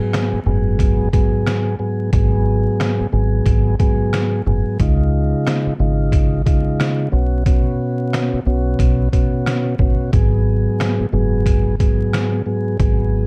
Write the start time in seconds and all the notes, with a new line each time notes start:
Already playing: G#2 F#3 B3 G#4
0.13 cross-stick, snare, closed hi-hat
0.33 muted fingered electric bass stroke
0.46 F#1 G#2 F#3 B3 G#4
0.79 kick, closed hi-hat
1.13 G#2 F#3 B3 G#4, kick, closed hi-hat
1.46 cross-stick, snare, closed hi-hat
1.79 G#2 F#3 B3 G#4
2.13 G#1 G#2 F#3 B3 G#4, kick, closed hi-hat
2.80 cross-stick, snare, closed hi-hat
3.00 muted fingered electric bass stroke
3.12 G#1 G#2 F#3 B3 G#4
3.46 G#1, kick, closed hi-hat
3.79 G#2 F#3 B3 G#4, kick, closed hi-hat
4.13 cross-stick, snare, closed hi-hat
4.46 F#1 G#2 F#3 B3 G#4
4.80 C#2 C#3 G#3 D#4 F4, kick, closed hi-hat
5.47 cross-stick, snare, closed hi-hat
5.67 muted fingered electric bass stroke
5.80 G#1 C#3 G#3 D#4 F4
6.12 kick, closed hi-hat
6.46 C#3 G#3 D#4 F4, kick, closed hi-hat
6.80 cross-stick, snare, closed hi-hat
7.12 B1 B2 B3 C#4 F#4
7.46 B2 B3 C#4 F#4, kick, closed hi-hat
8.13 cross-stick, snare, closed hi-hat
8.33 muted fingered electric bass stroke
8.46 B1 B2 B3 C#4 F#4
8.79 B1, kick, closed hi-hat
9.13 B2 B3 C#4 F#4, kick, closed hi-hat
9.46 cross-stick, snare, closed hi-hat
9.79 G#1 B2 B3 C#4 F#4, kick
10.12 G#1 G#2 F#3 B3 G#4, kick, closed hi-hat
10.80 cross-stick, snare, closed hi-hat
11.00 muted fingered electric bass stroke
11.12 F#1 G#2 F#3 B3 G#4
11.46 kick, closed hi-hat
11.79 G#2 F#3 B3 G#4, kick, closed hi-hat
12.13 cross-stick, snare, closed hi-hat
12.46 G#2 F#3 B3 G#4
12.80 G#1 G#2 F#3 B3 G#4, kick, closed hi-hat